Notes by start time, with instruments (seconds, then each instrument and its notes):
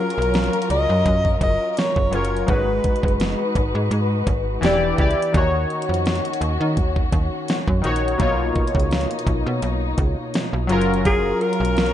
Already playing: synth keys F#3 C#4 F4 A#4, string section F#3 C#4 F4 A#4
0.00 alto saxophone A#4
0.10 closed hi-hat
0.18 fm bass B1
0.22 closed hi-hat
0.34 snare, closed hi-hat
0.44 closed hi-hat
0.53 closed hi-hat
0.62 closed hi-hat
0.70 fm bass C#2, alto saxophone D#5, closed hi-hat
0.90 fm bass F#2
1.06 fm bass F#2, kick, closed hi-hat
1.25 kick
1.41 fm bass F#1, alto saxophone D#5, kick, closed hi-hat
1.71 alto saxophone D#5
1.77 alto saxophone C#5, snare, closed hi-hat
1.96 fm bass F#1, kick
2.10 fm bass F#1, synth keys F#3 C#4 F4, alto saxophone A#4, closed hi-hat
2.15 synth keys C#5
2.25 closed hi-hat
2.37 closed hi-hat
2.46 fm bass G#1, synth keys G#3 D#4 F#4, string section G#3 D#4 F#4 B4, alto saxophone B4, kick, closed hi-hat
2.51 synth keys B4
2.84 kick, closed hi-hat
2.96 closed hi-hat
3.03 fm bass F#1, kick
3.08 closed hi-hat
3.20 snare, closed hi-hat
3.55 fm bass G#1, kick, closed hi-hat
3.75 fm bass G#2
3.91 fm bass G#2, closed hi-hat
4.27 fm bass G#1, kick, closed hi-hat
4.61 fm bass E1, synth keys E3 E4 G4, string section E3 B3 D4 G4, snare, closed hi-hat
4.66 synth keys D5
4.96 fm bass C#2, synth keys E3 E4 G4, kick, closed hi-hat
5.01 synth keys D5
5.11 closed hi-hat
5.22 closed hi-hat
5.32 fm bass D#2, synth keys D#3 D#4 F#4, string section D#3 A#3 C#4 F#4, kick, closed hi-hat
5.37 synth keys C#5
5.70 closed hi-hat
5.82 closed hi-hat
5.89 fm bass F2
5.94 closed hi-hat
6.06 snare, closed hi-hat
6.15 closed hi-hat
6.25 closed hi-hat
6.33 closed hi-hat
6.41 fm bass D#2, closed hi-hat
6.61 fm bass D#3
6.77 fm bass D#2, kick, closed hi-hat
6.96 kick
7.12 fm bass D#2, kick, closed hi-hat
7.48 snare, closed hi-hat
7.68 fm bass F#2, kick
7.82 fm bass A#1, synth keys D#3 D#4 F#4, closed hi-hat
7.87 synth keys C#5
7.96 closed hi-hat
8.08 closed hi-hat
8.18 fm bass B1, synth keys B2 A#3 D#4 F4, string section B2 D#4, kick, closed hi-hat
8.23 synth keys C#5
8.55 kick, closed hi-hat
8.67 closed hi-hat
8.75 fm bass C#2, kick
8.80 closed hi-hat
8.91 snare, closed hi-hat
9.01 closed hi-hat
9.11 closed hi-hat
9.19 closed hi-hat
9.27 fm bass B1, kick, closed hi-hat
9.46 fm bass B2
9.62 fm bass B1, closed hi-hat
9.98 fm bass C#2, kick, closed hi-hat
10.34 snare, closed hi-hat
10.53 fm bass B1
10.67 fm bass F#1, synth keys F#3 C#4 F4, string section F#3 C#4 F4 A#4, closed hi-hat, open hi-hat
10.72 synth keys A#4
10.81 closed hi-hat
10.94 closed hi-hat
11.05 alto saxophone G#4, kick, closed hi-hat
11.41 alto saxophone A#4, closed hi-hat
11.53 closed hi-hat
11.60 fm bass B1
11.65 closed hi-hat
11.77 snare, closed hi-hat
11.86 closed hi-hat